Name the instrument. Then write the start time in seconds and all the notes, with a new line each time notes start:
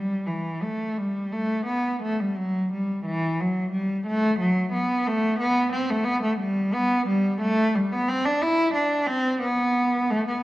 cello
Already playing: G3
0.27 E3
0.63 A3
0.98 G3
1.32 A3
1.66 B3
2.02 A3
2.19 G3
2.37 F#3
2.73 G3
3.06 E3
3.40 F#3
3.72 G3
4.07 A3
4.39 F#3
4.72 B3
5.07 A3
5.40 B3
5.72 C4
5.90 A3
6.04 B3
6.22 A3
6.39 G3
6.74 B3
7.08 G3
7.42 A3
7.75 G3
7.92 B3
8.09 C4
8.25 D4
8.41 E4
8.74 D4
9.07 C4
9.42 B3
10.10 A3
10.28 B3